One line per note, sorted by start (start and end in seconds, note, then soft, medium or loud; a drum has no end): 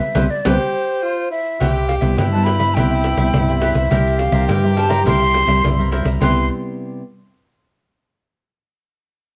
0.00 0.19 B4 loud
0.00 0.32 E5 medium
0.15 0.27 C2 medium
0.15 0.26 G3 loud
0.15 0.25 B3 medium
0.15 0.26 C4 loud
0.15 0.25 B4 medium
0.15 0.25 C5 medium
0.15 0.25 E5 medium
0.15 pandeiro loud
0.30 0.49 D5 medium
0.45 0.56 C2 medium
0.45 0.55 G3 loud
0.45 0.55 B3 loud
0.45 0.55 C4 medium
0.45 1.04 G4 loud
0.45 0.55 B4 medium
0.45 0.55 C5 medium
0.45 1.31 C5 medium
0.45 0.55 E5 medium
0.45 pandeiro loud
1.03 1.30 F4 medium
1.31 1.58 E4 medium
1.31 1.86 E5 medium
1.60 1.98 C2 medium
1.60 2.16 C3 medium
1.60 2.20 G4 loud
1.60 1.88 G4 medium
1.60 1.89 B4 medium
1.60 1.88 C5 medium
1.60 1.89 E5 medium
1.60 pandeiro medium
1.76 pandeiro soft
1.88 1.95 F5 medium
1.88 muted cavaquinho stroke soft
1.88 pandeiro medium
2.01 2.15 C2 medium
2.01 2.27 G3 medium
2.01 2.28 B3 medium
2.01 2.28 E4 medium
2.01 2.17 B4 medium
2.01 2.17 C5 medium
2.01 2.16 E5 medium
2.01 pandeiro medium
2.17 2.78 G2 loud
2.17 2.74 G2 medium
2.17 3.90 E4 loud
2.17 2.32 G4 soft
2.17 2.32 B4 soft
2.17 2.32 C5 soft
2.17 2.32 E5 medium
2.17 2.31 G5 medium
2.17 pandeiro medium
2.31 2.58 G3 medium
2.31 2.58 B3 medium
2.31 2.58 E4 medium
2.31 2.45 B4 soft
2.31 2.45 C5 soft
2.31 2.46 E5 soft
2.31 2.46 A5 medium
2.31 pandeiro soft
2.44 2.60 G4 soft
2.44 2.59 B4 medium
2.44 2.60 C5 soft
2.44 2.58 E5 medium
2.44 2.76 B5 medium
2.44 pandeiro medium
2.59 2.71 G3 medium
2.59 2.71 B3 medium
2.59 2.71 E4 medium
2.59 2.75 B4 medium
2.59 2.75 C5 medium
2.59 2.74 E5 medium
2.59 pandeiro medium
2.74 3.13 C2 loud
2.74 3.31 C3 medium
2.74 3.15 G3 medium
2.74 3.15 B3 medium
2.74 3.15 E4 medium
2.74 2.90 G4 medium
2.74 2.90 B4 medium
2.74 2.90 C5 medium
2.74 3.59 G5 loud
2.74 pandeiro medium
2.78 2.90 E5 medium
2.91 3.04 B4 soft
2.91 3.04 C5 soft
2.91 3.04 E5 medium
2.91 pandeiro soft
3.04 muted cavaquinho stroke soft
3.04 pandeiro medium
3.17 3.31 C2 medium
3.17 3.43 G3 medium
3.17 3.43 B3 medium
3.17 3.43 E4 medium
3.17 3.47 B4 medium
3.17 3.48 C5 medium
3.17 3.47 E5 medium
3.17 pandeiro medium
3.33 3.71 C2 medium
3.33 3.89 G2 medium
3.33 pandeiro medium
3.49 3.87 G3 medium
3.49 3.88 B3 medium
3.49 3.88 E4 medium
3.49 3.61 B4 soft
3.49 3.60 C5 soft
3.49 3.61 E5 soft
3.49 pandeiro soft
3.59 3.75 G4 medium
3.59 3.74 B4 medium
3.59 3.75 C5 medium
3.59 4.20 E5 medium
3.59 3.73 E5 medium
3.59 pandeiro medium
3.74 3.88 C2 medium
3.74 3.89 B4 soft
3.74 3.90 C5 soft
3.74 3.89 E5 soft
3.74 pandeiro medium
3.90 4.28 C2 medium
3.90 4.46 C3 medium
3.90 4.30 G3 medium
3.90 4.30 A#3 medium
3.90 4.18 E4 medium
3.90 4.30 E4 medium
3.90 5.60 G4 loud
3.90 4.18 A#4 medium
3.90 4.19 C5 medium
3.90 4.19 E5 medium
3.90 pandeiro medium
4.08 pandeiro soft
4.18 4.47 F5 medium
4.18 muted cavaquinho stroke soft
4.18 pandeiro medium
4.32 4.46 C2 medium
4.32 4.58 G3 medium
4.32 4.58 A#3 medium
4.32 4.58 E4 medium
4.32 4.48 A#4 medium
4.32 4.47 C5 medium
4.32 4.47 E5 medium
4.32 pandeiro medium
4.48 5.04 G2 medium
4.48 5.07 G2 loud
4.48 4.62 E4 soft
4.48 4.62 A#4 soft
4.48 4.63 C5 medium
4.48 4.62 E5 medium
4.48 4.54 G5 loud
4.48 pandeiro medium
4.63 4.88 G3 medium
4.63 4.88 A#3 medium
4.63 4.88 E4 medium
4.63 4.76 A#4 soft
4.63 4.76 C5 soft
4.63 4.77 E5 soft
4.63 pandeiro soft
4.76 4.91 E4 soft
4.76 4.90 A#4 medium
4.76 4.89 C5 medium
4.76 4.88 E5 medium
4.76 4.92 A5 medium
4.76 pandeiro medium
4.89 5.01 G3 medium
4.89 5.01 A#3 medium
4.89 5.01 E4 medium
4.89 5.05 A#4 medium
4.89 5.05 C5 medium
4.89 5.04 E5 medium
4.89 5.06 A#5 loud
4.89 pandeiro medium
5.06 5.43 C2 medium
5.06 5.61 C3 medium
5.06 5.45 G3 medium
5.06 5.45 A#3 medium
5.06 5.20 E4 medium
5.06 5.46 E4 medium
5.06 5.20 A#4 medium
5.06 5.20 C5 medium
5.06 5.20 E5 medium
5.06 5.89 C6 loud
5.06 pandeiro medium
5.21 5.34 A#4 soft
5.21 5.34 C5 medium
5.21 5.34 E5 medium
5.21 pandeiro soft
5.34 muted cavaquinho stroke soft
5.34 pandeiro medium
5.47 5.61 C2 medium
5.47 5.73 G3 medium
5.47 5.73 A#3 medium
5.47 5.74 E4 medium
5.47 5.78 A#4 medium
5.47 5.77 C5 medium
5.47 5.77 E5 medium
5.47 pandeiro medium
5.64 6.01 C2 loud
5.64 6.19 G2 medium
5.64 6.18 E4 medium
5.64 pandeiro medium
5.79 6.18 G3 medium
5.79 6.18 A#3 medium
5.79 6.18 E4 medium
5.79 5.91 A#4 soft
5.79 5.92 C5 soft
5.79 5.92 E5 soft
5.79 pandeiro soft
5.91 6.06 E4 medium
5.91 6.05 A#4 medium
5.91 6.04 C5 medium
5.91 6.03 E5 medium
5.91 pandeiro medium
6.04 6.18 C2 medium
6.04 6.20 A#4 soft
6.04 6.20 C5 soft
6.04 6.19 E5 medium
6.04 pandeiro medium
6.21 6.49 C2 medium
6.21 7.02 C3 medium
6.21 7.02 G3 medium
6.21 7.02 B3 medium
6.21 6.49 E4 medium
6.21 7.02 E4 medium
6.21 6.44 G4 medium
6.21 6.45 B4 medium
6.21 6.45 C5 medium
6.21 6.46 E5 medium
6.21 6.48 C6 medium
6.21 pandeiro medium